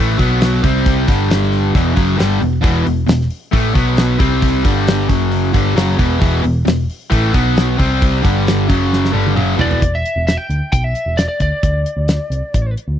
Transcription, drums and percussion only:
0.19 kick medium
0.19 open hi-hat medium
0.41 snare loud
0.41 open hi-hat medium
0.64 kick loud
0.64 open hi-hat medium
0.86 kick loud
0.86 open hi-hat medium
1.08 kick loud
1.08 open hi-hat medium
1.30 snare loud
1.30 open hi-hat medium
1.43 snare soft
1.52 open hi-hat medium
1.75 kick loud
1.75 open hi-hat medium
1.97 kick loud
1.97 open hi-hat medium
2.20 snare loud
2.20 open hi-hat medium
2.42 open hi-hat soft
2.64 kick loud
2.64 open hi-hat medium
2.86 open hi-hat medium
3.08 snare loud
3.08 open hi-hat medium
3.21 snare soft
3.31 open hi-hat medium
3.53 kick loud
3.53 open hi-hat medium
3.75 kick loud
3.75 open hi-hat medium
3.97 snare loud
3.97 open hi-hat medium
4.20 kick loud
4.20 open hi-hat medium
4.42 kick loud
4.42 open hi-hat medium
4.65 kick loud
4.65 open hi-hat medium
4.88 snare loud
4.88 open hi-hat medium
5.09 kick loud
5.09 open hi-hat medium
5.32 open hi-hat medium
5.54 kick loud
5.54 open hi-hat medium
5.77 snare loud
5.77 open hi-hat medium
5.99 kick medium
5.99 open hi-hat medium
6.21 kick loud
6.21 open hi-hat medium
6.44 open hi-hat medium
6.67 snare loud
6.67 open hi-hat medium
6.90 open hi-hat medium
7.12 kick medium
7.12 open hi-hat medium
7.34 kick loud
7.34 open hi-hat medium
7.57 snare loud
7.57 open hi-hat medium
7.80 kick medium
7.80 open hi-hat medium
8.02 kick loud
8.02 open hi-hat medium
8.25 kick loud
8.25 open hi-hat medium
8.47 snare loud
8.47 open hi-hat medium
8.70 kick medium
8.70 open hi-hat medium
8.93 snare medium
9.05 snare medium
9.27 high tom medium
9.37 mid tom medium
9.59 floor tom medium
9.71 floor tom medium
9.82 kick loud
9.82 closed hi-hat medium
10.05 closed hi-hat medium
10.28 snare medium
10.28 closed hi-hat medium
10.50 closed hi-hat medium
10.73 kick loud
10.73 closed hi-hat medium
10.95 closed hi-hat medium
11.18 snare loud
11.18 closed hi-hat medium
11.40 kick medium
11.40 closed hi-hat medium
11.63 kick loud
11.63 closed hi-hat medium
11.86 closed hi-hat medium
12.08 snare loud
12.08 closed hi-hat medium
12.32 closed hi-hat medium
12.54 kick medium
12.54 closed hi-hat medium
12.77 closed hi-hat medium

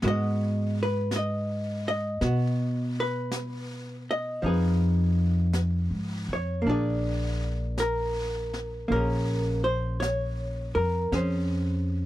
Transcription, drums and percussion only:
0.02 brush sweep soft
0.02 snare soft
1.11 brush sweep soft
1.11 snare soft
1.11 hi-hat pedal soft
2.21 brush sweep soft
2.21 snare soft
3.32 brush sweep soft
3.32 snare soft
3.32 hi-hat pedal medium
4.43 brush sweep soft
5.53 brush sweep soft
5.53 snare soft
5.53 hi-hat pedal medium
6.65 brush sweep soft
7.78 brush sweep soft
7.78 snare soft
7.78 hi-hat pedal soft
8.53 snare soft
8.91 brush sweep soft
10.02 brush sweep soft
10.02 snare soft
10.02 hi-hat pedal soft
11.12 brush sweep soft
11.12 snare soft

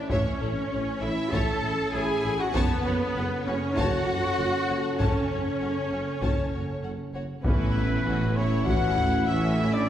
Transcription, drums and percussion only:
0.10 taiko medium
1.32 taiko medium
2.55 taiko medium
3.77 taiko medium
5.00 taiko medium
6.23 taiko medium
7.45 taiko medium
8.67 taiko medium
8.97 taiko low soft

